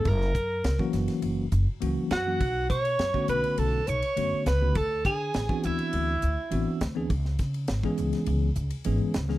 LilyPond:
<<
  \new Staff \with { instrumentName = "Overdriven electric guitar" } { \time 4/4 \key fis \minor \tempo 4 = 102 ais''4. r2 fis''8~ | fis''8 cis'''4 b''8 a''8 cis'''4 b''8 | a''8 gis''4 e''2 r8 | r1 | }
  \new Staff \with { instrumentName = "Alto saxophone" } { \time 4/4 \key fis \minor ais'4. r2 fis'8~ | fis'8 cis''4 b'8 a'8 cis''4 b'8 | a'8 gis'4 e'2 r8 | r1 | }
  \new Staff \with { instrumentName = "Tine electric piano" } { \time 4/4 \key fis \minor r4 r16 <e fis ais cis' fis'>4 r8. <e fis ais cis' fis'>8 r16 <e fis ais cis' fis'>16 | r4 r16 <d a b cis' fis'>4 r8. <d a b cis' fis'>8 r16 <d a b cis' fis'>16 | r4 r16 <e b c' d' fis'>4 r8. <e b c' d' fis'>8 r16 <e b c' d' gis'>16 | r4 r16 <e gis b cis' gis'>4 r8. <e gis b cis' gis'>8 r16 <e gis b cis' gis'>16 | }
  \new Staff \with { instrumentName = "Upright bass" } { \clef bass \time 4/4 \key fis \minor fis,,8 fis,8 cis,16 r16 fis,,16 r16 fis,,8 fis,,16 r16 cis,16 r16 fis,8 | b,,8 b,8 fis,16 r16 b,,16 r16 b,,8 b,,16 r16 fis,16 r16 cis,8 | d,8 d8 a,,16 r16 d,16 r16 d,8 d,16 r16 a,,16 r16 d,8 | cis,8 cis8 gis,,16 r16 cis,16 r16 cis,8 cis,16 r16 gis,,16 r16 cis,8 | }
  \new DrumStaff \with { instrumentName = "Drums" } \drummode { \time 4/4 <bd cymr>16 sn16 <hhp bd cymr>8 <cymr sn>16 bd16 <hhp cymr sn>16 <cymr sn>16 cymr8 <hhp cymr>8 cymr8 <hhp cymr sn>8 | <bd cymr>8 <hhp bd cymr>16 cymr16 <cymr sn>16 bd16 <hhp cymr>16 cymr16 cymr8 <hhp cymr>16 cymr16 cymr8 <hhp cymr sn>8 | <bd cymr>8 <hhp bd cymr>8 <cymr sn>16 bd16 <hhp cymr>16 cymr16 cymr8 <hhp cymr>8 cymr8 <hhp cymr sn>8 | <bd cymr>16 sn16 <hhp bd cymr sn>16 cymr16 <cymr sn>16 bd16 <hhp cymr>16 <cymr sn>16 cymr8 <hhp cymr>16 cymr16 cymr8 <hhp cymr sn>16 sn16 | }
>>